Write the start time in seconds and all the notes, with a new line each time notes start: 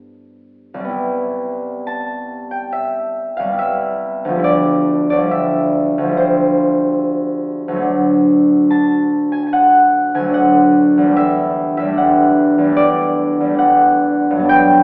Already playing: G2 G3 B3 E4 G4 D5
0.74 C2
0.80 G3
0.84 B3
0.89 E4
1.87 A5
2.51 G5
2.73 E5
3.37 C2 F5
3.44 G3
3.49 B3
3.53 E4
3.59 E5
4.25 D2
4.29 F3
4.35 G3 E4
4.44 D5
5.10 D2 D5
5.17 F3
5.22 G3
5.26 E4
5.31 E5
5.98 D2
6.03 F3
6.08 G3
6.12 E4
6.17 C5
7.68 D2 F#3
7.76 A3
7.82 D4
8.70 A5
9.32 G#5
9.47 G#5
9.53 F#5
10.14 D2 G#5
10.20 F#3
10.24 A3
10.29 D4
10.34 F#5
10.98 E2
11.02 G3
11.07 A3
11.12 D4
11.16 E5
11.77 E2 E5
11.84 G3
11.88 A3
11.93 D4
11.98 F#5
12.58 E2
12.64 G3
12.68 A3 D4
12.76 D5
13.40 E2
13.45 G3
13.50 A3
13.54 D4
13.59 F#5
14.31 G2
14.35 F#3
14.39 B3
14.44 D4
14.49 G5